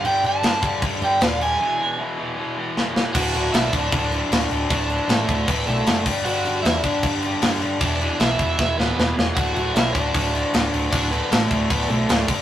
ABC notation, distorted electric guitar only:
X:1
M:4/4
L:1/8
Q:1/4=154
K:D
V:1 name="Distorted electric guitar" clef=bass
[G,,D,G,] [G,,D,G,] [G,,D,G,] [G,,D,G,] [G,,D,G,] [G,,D,G,] [G,,D,G,] [G,,D,G,] | [E,,B,,E,] [E,,B,,E,] [E,,B,,E,] [E,,B,,E,] [E,,B,,E,] [E,,B,,E,] [E,,B,,E,] [E,,B,,E,] | [D,,A,,D,] [D,,A,,D,] [D,,A,,D,] [D,,A,,D,] [D,,A,,D,] [D,,A,,D,] [D,,A,,D,] [D,,A,,D,] | [D,,A,,D,] [D,,A,,D,] [D,,A,,D,] [D,,A,,D,] [D,,A,,D,] [D,,A,,D,] [D,,A,,D,] [G,,D,G,] |
[G,,D,G,] [G,,D,G,] [G,,D,G,] [G,,D,G,] [G,,D,G,] [G,,D,G,] [G,,D,G,] [G,,D,G,] | [E,,B,,E,] [E,,B,,E,] [E,,B,,E,] [E,,B,,E,] [E,,B,,E,] [E,,B,,E,] [E,,B,,E,] [E,,B,,E,] | [D,,A,,D,] [D,,A,,D,] [D,,A,,D,] [D,,A,,D,] [D,,A,,D,] [D,,A,,D,] [D,,A,,D,] [D,,A,,D,] | [D,,A,,D,] [D,,A,,D,] [D,,A,,D,] [D,,A,,D,] [D,,A,,D,] [D,,A,,D,] [D,,A,,D,] [G,,D,G,] |]